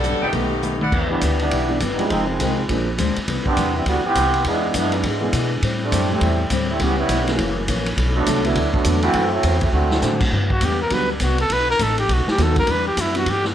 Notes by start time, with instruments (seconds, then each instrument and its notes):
Already playing: upright bass B1, saxophone section G3 D4 F#4 A4
0.03 steel-string acoustic guitar G2 F#3 B3 D4, hi-hat pedal
0.13 upright bass D2
0.22 upright bass C2, trumpet section D#4 A4 B4 G5
0.26 saxophone section D#3 A3 B3 G4
0.33 upright bass B1, steel-string acoustic guitar B2 G3 A3 D#4, grand piano D#3 A3 B3 G4, kick, ride
0.62 steel-string acoustic guitar B2 G3 A3 D#4, hi-hat pedal, mid tom
0.81 trumpet section E4 B4 D5 F#5, mid tom
0.92 upright bass E2, steel-string acoustic guitar E3 B3 D4 G4, kick, crash
1.10 trombone section E3 G3 B3 D4
1.21 upright bass D2, steel-string acoustic guitar E3 B3 D4 G4, kick, hi-hat pedal, ride
1.40 trombone section G3 B3 D4 E4, ride
1.51 upright bass B1, steel-string acoustic guitar E3 B3 D4 G4, kick, ride
1.69 grand piano E3 G3 B3 D4 G4
1.80 upright bass G1, steel-string acoustic guitar E3 B3 D4 G4, kick, hi-hat pedal, ride
1.94 trombone section G3 B3 D4 D#4 E4
1.98 grand piano F3 G#3 C4 D#4 G#4, muted upright bass stroke, ride
2.08 upright bass F1, steel-string acoustic guitar F2 D#3, trombone section F3 G#3 C4 D#4, kick, ride
2.12 steel-string acoustic guitar G#3 C4
2.26 trombone section D#3 F3 G#3 C4
2.40 upright bass C2, steel-string acoustic guitar F2 D#3 G#3 C4, kick, hi-hat pedal, ride
2.68 upright bass A#1, steel-string acoustic guitar A#2 G#3 C4, grand piano F3 A#3 C4 D4 G#4, kick, ride
2.72 steel-string acoustic guitar D4
2.98 upright bass D2, steel-string acoustic guitar A#2 G#3 C4 D4, kick, hi-hat pedal, ride
3.16 muted upright bass stroke, ride
3.27 upright bass C2, steel-string acoustic guitar C3 G3 B3 E4, kick, ride
3.46 trombone section G3 B3 C4 D4, muted upright bass stroke, kick
3.57 upright bass E2, steel-string acoustic guitar C3 G3 B3 E4, kick, hi-hat pedal, ride
3.76 trombone section G3 B3 C4 E4
3.86 upright bass D2, steel-string acoustic guitar C3 G3 B3, trombone section D3 G3 B3 F#4, kick, ride
3.90 steel-string acoustic guitar E4
4.05 trombone section E3 B3 C4 G4, muted upright bass stroke
4.15 upright bass C2, steel-string acoustic guitar C3 G3 B3 E4, kick, hi-hat pedal, ride
4.34 ride
4.44 upright bass E2, steel-string acoustic guitar E3 B3 D4 G#4, trombone section G#3 B3 D4 E4, kick, ride
4.74 upright bass F#2, steel-string acoustic guitar E3 B3 D4 G#4, trombone section D4 E4, kick, hi-hat pedal, ride
4.78 trombone section G#3 B3
4.92 trombone section E3 G#3 B3 D4, ride
5.03 upright bass G#2, trombone section D3 E3 B3, steel-string acoustic guitar E3 B3 D4 G#4, kick, ride
5.08 trombone section G#3
5.21 grand piano E3 G#3 B3 D4 G#4
5.33 upright bass B2, steel-string acoustic guitar E3 B3 D4 G#4, kick, hi-hat pedal, ride
5.62 steel-string acoustic guitar A2 G3 C4 E4, upright bass A2, kick, ride
5.83 trombone section G3 A3 C4 D4
5.92 upright bass F#2, steel-string acoustic guitar A2 G3 C4 E4, kick, hi-hat pedal, ride
6.10 grand piano E3 G3 A3 C4 G4, trombone section G3 A3 C4 E4
6.21 upright bass E2, steel-string acoustic guitar A2 G3 C4, kick, ride
6.25 steel-string acoustic guitar E4
6.50 upright bass D2, steel-string acoustic guitar A2 G3 C4 E4, kick, hi-hat pedal, ride
6.70 trombone section G3 A3 C4 E4
6.80 upright bass C#2, steel-string acoustic guitar C#3 G3 B3 E4, grand piano E3 G3 B3 C#4 G4, trombone section E3 B3 C#4 G4, kick, ride
6.98 trombone section G3 B3 C#4 E4
7.09 upright bass B1, steel-string acoustic guitar C#3 G3 B3 E4, kick, hi-hat pedal, ride
7.27 grand piano E3 F#3 A#3 C#4 G#4, snare, ride
7.39 upright bass F#1, steel-string acoustic guitar F#2 E3 A#3 C#4, kick, ride
7.68 upright bass A#1, steel-string acoustic guitar F#2 E3 A#3 C#4, kick, hi-hat pedal, ride
7.86 ride
7.96 upright bass B1, steel-string acoustic guitar B2 F#3 A3 D4, kick, ride
8.15 trombone section F#3 A3 B3 D4
8.26 upright bass C2, steel-string acoustic guitar B2 F#3 A3 D4, kick, hi-hat pedal, ride
8.44 grand piano D3 F#3 A3 B3 F#4, trombone section A3 B3 D4 E4, ride
8.55 upright bass D2, steel-string acoustic guitar B2 F#3 A3 D4, kick, ride
8.72 trombone section F#3 A3 B3 D4, kick
8.84 upright bass E2, steel-string acoustic guitar B2 F#3 A3, grand piano D3 F#3 A3 B3 D4, kick, hi-hat pedal, ride
8.88 steel-string acoustic guitar D4
9.02 trombone section E3 A3 C4 F#4, ride
9.14 upright bass F#2, steel-string acoustic guitar F#2 E3 A3 C4, kick, ride
9.31 trombone section F#3 A3 C4 E4
9.43 upright bass E2, steel-string acoustic guitar F#2 E3 A3 C4, kick, hi-hat pedal, ride
9.61 trombone section F#3 A3 C4 E4, kick, ride
9.72 upright bass D2, trombone section D3 A3 C4 F#4, steel-string acoustic guitar D3 A3 C4
9.76 steel-string acoustic guitar F#4
9.91 snare
10.02 upright bass A2, grand piano D3 F#3 A3 C4 F#4, steel-string acoustic guitar D3 A3 C4 F#4, snare, hi-hat pedal
10.20 kick, crash
10.31 upright bass G2, steel-string acoustic guitar G3 B3 D4 F#4, kick
10.50 trumpet F#4, kick
10.61 upright bass E2, steel-string acoustic guitar G3 B3 D4 F#4, kick, hi-hat pedal, ride
10.65 trumpet G4
10.82 trumpet A#4
10.90 upright bass D2, grand piano D3 F#3 G3 B3 F#4, steel-string acoustic guitar G3 B3 D4 F#4, trumpet B4, kick, ride
11.12 trumpet D4
11.20 upright bass C2, steel-string acoustic guitar G3 B3 D4 F#4, trumpet F#4, kick, hi-hat pedal, ride
11.38 trumpet A4, ride
11.50 upright bass B1, steel-string acoustic guitar B2 A3 D#4 F#4, trumpet B4, kick, ride
11.70 trumpet A#4
11.79 upright bass A1, steel-string acoustic guitar B2 A3 D#4 F#4, trumpet A4, kick, hi-hat pedal, ride
11.98 trumpet G4, ride
12.08 upright bass B1, steel-string acoustic guitar B2 A3 D#4 F#4, kick, ride
12.13 trumpet F#4
12.27 trumpet G4, muted upright bass stroke, snare
12.37 upright bass D#2, steel-string acoustic guitar B2 A3 D#4 F#4, grand piano D#3 F#3 A3 B3 F#4, kick, snare, hi-hat pedal, ride
12.43 trumpet A4
12.56 trumpet A#4, kick, ride
12.66 upright bass E2, steel-string acoustic guitar E3 G3 D4 F#4, kick, ride
12.71 trumpet B4
12.88 trumpet G4
12.96 upright bass F#2, steel-string acoustic guitar E3 G3 D4 F#4, kick, hi-hat pedal, ride
13.01 trumpet E4
13.14 grand piano E3 G3 B3 D4 F#4, ride
13.18 trumpet F#4
13.25 upright bass G2, steel-string acoustic guitar E3 G3 D4 F#4, kick, ride
13.30 trumpet G4
13.44 trumpet B3, snare